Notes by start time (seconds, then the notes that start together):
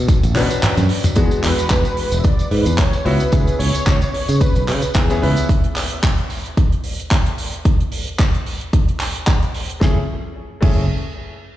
Already playing: C#4 D4 F#4 A4
0.08 kick, closed hi-hat, tambourine
0.23 A1, closed hi-hat, tambourine
0.34 B2 C#4 D4 F#4 B4, clap, open hi-hat, high tom
0.50 closed hi-hat, tambourine
0.63 clap, closed hi-hat, mid tom, tambourine
0.77 F#2, closed hi-hat, mid tom, tambourine
0.89 open hi-hat
1.04 closed hi-hat, mid tom, tambourine
1.15 E2 G#3 B3 D4 F#4 G#4, kick, closed hi-hat, tambourine
1.31 closed hi-hat, tambourine
1.43 E2 B4, clap, open hi-hat
1.58 muted fingered electric bass stroke, closed hi-hat, tambourine
1.70 E2, kick, clap, closed hi-hat, tambourine
1.85 closed hi-hat, tambourine
1.97 open hi-hat
2.12 E1, closed hi-hat, tambourine
2.18 E5
2.24 D5, kick, closed hi-hat, tambourine
2.39 closed hi-hat, tambourine
2.51 G#2 B4, open hi-hat
2.66 E2, closed hi-hat, tambourine
2.78 C#5, kick, clap, closed hi-hat, tambourine
2.93 closed hi-hat, tambourine
3.05 C#2 B3 C#4 E4 F#4 B4, open hi-hat
3.20 closed hi-hat, tambourine
3.32 C#2 B3 C#4 E4 G#4, kick, closed hi-hat, tambourine
3.47 closed hi-hat, tambourine
3.59 C#2 C#5, open hi-hat
3.75 muted fingered electric bass stroke, closed hi-hat, tambourine
3.87 C#2, kick, clap, closed hi-hat, tambourine
4.02 closed hi-hat, tambourine
4.13 C#5, muted fingered electric bass stroke, open hi-hat
4.29 C#3, closed hi-hat, tambourine
4.40 B4, kick, closed hi-hat, tambourine
4.55 B1, closed hi-hat, tambourine
4.68 C#3 B4, clap, open hi-hat
4.82 muted fingered electric bass stroke, closed hi-hat, tambourine
4.94 E2 G#4, kick, clap, closed hi-hat, tambourine
5.10 B3 C#4 E4 G#4, closed hi-hat, tambourine
5.22 C#2 B3 C#4 E4 B4, open hi-hat
5.37 closed hi-hat, tambourine
5.49 kick, closed hi-hat
5.64 closed hi-hat
5.76 clap, open hi-hat
5.91 closed hi-hat
6.03 kick, clap, closed hi-hat
6.18 closed hi-hat
6.30 open hi-hat
6.46 closed hi-hat
6.57 kick, closed hi-hat
6.72 closed hi-hat
6.84 open hi-hat
7.00 closed hi-hat
7.11 kick, clap, closed hi-hat
7.26 closed hi-hat
7.38 open hi-hat
7.53 closed hi-hat
7.65 kick, closed hi-hat
7.80 closed hi-hat
7.92 open hi-hat
8.07 closed hi-hat
8.19 kick, clap, closed hi-hat
8.34 closed hi-hat
8.46 open hi-hat
8.61 closed hi-hat
8.73 kick, closed hi-hat
8.88 closed hi-hat
9.00 clap, open hi-hat
9.16 closed hi-hat
9.27 kick, clap, closed hi-hat
9.42 closed hi-hat
9.54 open hi-hat
9.70 closed hi-hat
9.80 F#1 A3 C#4 E4 G#4, kick, snare
10.61 F#1 A3 C#4 E4 G#4, kick, crash